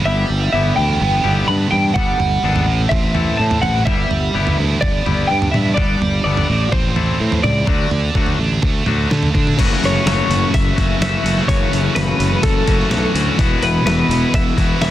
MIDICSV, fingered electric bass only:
0, 0, Header, 1, 2, 480
1, 0, Start_track
1, 0, Tempo, 476190
1, 56, Time_signature, 4, 2, 24, 8
1, 15026, End_track
2, 0, Start_track
2, 0, Title_t, "Fingered electric bass"
2, 0, Program_c, 0, 33
2, 60, Note_on_c, 0, 31, 97
2, 237, Note_off_c, 0, 31, 0
2, 302, Note_on_c, 0, 31, 78
2, 478, Note_off_c, 0, 31, 0
2, 537, Note_on_c, 0, 31, 77
2, 715, Note_off_c, 0, 31, 0
2, 782, Note_on_c, 0, 38, 78
2, 958, Note_off_c, 0, 38, 0
2, 1019, Note_on_c, 0, 31, 83
2, 1196, Note_off_c, 0, 31, 0
2, 1257, Note_on_c, 0, 31, 79
2, 1435, Note_off_c, 0, 31, 0
2, 1500, Note_on_c, 0, 43, 85
2, 1676, Note_off_c, 0, 43, 0
2, 1735, Note_on_c, 0, 43, 75
2, 1913, Note_off_c, 0, 43, 0
2, 1972, Note_on_c, 0, 31, 92
2, 2151, Note_off_c, 0, 31, 0
2, 2215, Note_on_c, 0, 31, 82
2, 2393, Note_off_c, 0, 31, 0
2, 2453, Note_on_c, 0, 32, 75
2, 2694, Note_off_c, 0, 32, 0
2, 2694, Note_on_c, 0, 33, 86
2, 2872, Note_off_c, 0, 33, 0
2, 2938, Note_on_c, 0, 33, 78
2, 3293, Note_off_c, 0, 33, 0
2, 3421, Note_on_c, 0, 45, 96
2, 3597, Note_off_c, 0, 45, 0
2, 3657, Note_on_c, 0, 33, 80
2, 3835, Note_off_c, 0, 33, 0
2, 3896, Note_on_c, 0, 31, 101
2, 4074, Note_off_c, 0, 31, 0
2, 4141, Note_on_c, 0, 31, 79
2, 4317, Note_off_c, 0, 31, 0
2, 4384, Note_on_c, 0, 31, 81
2, 4559, Note_off_c, 0, 31, 0
2, 4625, Note_on_c, 0, 38, 92
2, 4800, Note_off_c, 0, 38, 0
2, 4860, Note_on_c, 0, 31, 82
2, 5037, Note_off_c, 0, 31, 0
2, 5106, Note_on_c, 0, 31, 89
2, 5280, Note_off_c, 0, 31, 0
2, 5347, Note_on_c, 0, 43, 87
2, 5521, Note_off_c, 0, 43, 0
2, 5587, Note_on_c, 0, 43, 74
2, 5761, Note_off_c, 0, 43, 0
2, 5821, Note_on_c, 0, 31, 94
2, 5997, Note_off_c, 0, 31, 0
2, 6062, Note_on_c, 0, 31, 78
2, 6238, Note_off_c, 0, 31, 0
2, 6301, Note_on_c, 0, 31, 89
2, 6478, Note_off_c, 0, 31, 0
2, 6548, Note_on_c, 0, 33, 93
2, 6722, Note_off_c, 0, 33, 0
2, 6779, Note_on_c, 0, 33, 87
2, 7135, Note_off_c, 0, 33, 0
2, 7261, Note_on_c, 0, 45, 94
2, 7438, Note_off_c, 0, 45, 0
2, 7499, Note_on_c, 0, 37, 85
2, 7677, Note_off_c, 0, 37, 0
2, 7738, Note_on_c, 0, 38, 97
2, 7916, Note_off_c, 0, 38, 0
2, 7976, Note_on_c, 0, 38, 84
2, 8155, Note_off_c, 0, 38, 0
2, 8216, Note_on_c, 0, 38, 76
2, 8395, Note_off_c, 0, 38, 0
2, 8457, Note_on_c, 0, 33, 85
2, 8636, Note_off_c, 0, 33, 0
2, 8695, Note_on_c, 0, 38, 84
2, 8875, Note_off_c, 0, 38, 0
2, 8943, Note_on_c, 0, 38, 80
2, 9120, Note_off_c, 0, 38, 0
2, 9185, Note_on_c, 0, 50, 86
2, 9361, Note_off_c, 0, 50, 0
2, 9420, Note_on_c, 0, 50, 82
2, 9598, Note_off_c, 0, 50, 0
2, 9664, Note_on_c, 0, 30, 103
2, 9808, Note_off_c, 0, 30, 0
2, 9894, Note_on_c, 0, 30, 83
2, 10041, Note_off_c, 0, 30, 0
2, 10137, Note_on_c, 0, 30, 83
2, 10283, Note_off_c, 0, 30, 0
2, 10371, Note_on_c, 0, 30, 89
2, 10519, Note_off_c, 0, 30, 0
2, 10625, Note_on_c, 0, 30, 82
2, 10768, Note_off_c, 0, 30, 0
2, 10863, Note_on_c, 0, 30, 82
2, 11007, Note_off_c, 0, 30, 0
2, 11094, Note_on_c, 0, 30, 96
2, 11241, Note_off_c, 0, 30, 0
2, 11328, Note_on_c, 0, 30, 92
2, 11476, Note_off_c, 0, 30, 0
2, 11578, Note_on_c, 0, 30, 110
2, 11723, Note_off_c, 0, 30, 0
2, 11818, Note_on_c, 0, 30, 88
2, 11963, Note_off_c, 0, 30, 0
2, 12055, Note_on_c, 0, 30, 86
2, 12201, Note_off_c, 0, 30, 0
2, 12293, Note_on_c, 0, 30, 93
2, 12439, Note_off_c, 0, 30, 0
2, 12534, Note_on_c, 0, 30, 94
2, 12680, Note_off_c, 0, 30, 0
2, 12779, Note_on_c, 0, 30, 95
2, 12923, Note_off_c, 0, 30, 0
2, 13008, Note_on_c, 0, 35, 103
2, 13156, Note_off_c, 0, 35, 0
2, 13249, Note_on_c, 0, 38, 94
2, 13396, Note_off_c, 0, 38, 0
2, 13496, Note_on_c, 0, 28, 107
2, 13641, Note_off_c, 0, 28, 0
2, 13728, Note_on_c, 0, 28, 89
2, 13876, Note_off_c, 0, 28, 0
2, 13966, Note_on_c, 0, 28, 96
2, 14114, Note_off_c, 0, 28, 0
2, 14201, Note_on_c, 0, 28, 97
2, 14351, Note_off_c, 0, 28, 0
2, 14451, Note_on_c, 0, 28, 88
2, 14597, Note_off_c, 0, 28, 0
2, 14693, Note_on_c, 0, 28, 93
2, 14839, Note_off_c, 0, 28, 0
2, 14926, Note_on_c, 0, 28, 102
2, 15026, Note_off_c, 0, 28, 0
2, 15026, End_track
0, 0, End_of_file